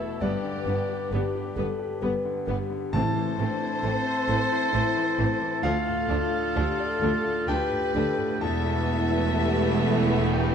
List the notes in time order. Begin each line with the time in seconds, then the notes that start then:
Already playing: E2 A3 E4 A4 B4 E5
0.00 B2
0.21 G1 G2 G3 B3 D4 G4 B4 D5
0.44 D3
0.67 G1 G2 G3 B3
0.89 G4
1.12 G1 G2 G3 B3 G4 B4
1.35 G4
1.56 G1 G2 G3 B3 A4 B4
1.79 G4
2.01 G1 G2 G3 B3 B4
2.25 D3
2.47 G1 G2 G3 B3 G4
2.70 D3
2.93 A1 A2 E3 A3 C4 E4 A4 C5 A5
3.16 E3
3.38 A1 A2 E3 A3 C4 D4
3.61 E4
3.83 A1 A2 E3 A3 C4 A4
4.06 C5
4.28 A1 A2 E3 A3 C4 A4
4.51 E4
4.72 A1 A2 E3 A3 C4 E4
4.97 E3
5.18 A1 A2 E3 A3 C4
5.42 E3
5.63 D2 F3 A3 D4 F4 A4 F5
5.88 A2
6.09 D2 F3 A3 D4
6.33 F4
6.56 D2 F3 A3 D4 G4 A4
6.80 D5
7.01 D2 F3 A3 D4 A4
7.24 F4
7.48 D2 F3 A3 D4 G4 B4 G5
7.71 A2
7.94 D2 F3 A3 D4 A4
8.18 A2
8.41 E1 E2 E3 A3 B3 E4 A4 E5 A5
8.66 B2
8.88 B3 E4
9.11 E4
9.35 G4 A4
9.59 B4
9.83 A4
10.07 E4
10.32 B3 G4 B4 G5